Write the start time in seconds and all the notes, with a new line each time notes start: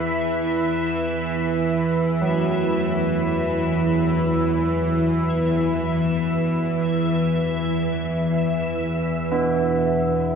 Already playing: E2 E3 E4 B4 E5 B5
2.21 F#3
9.32 B3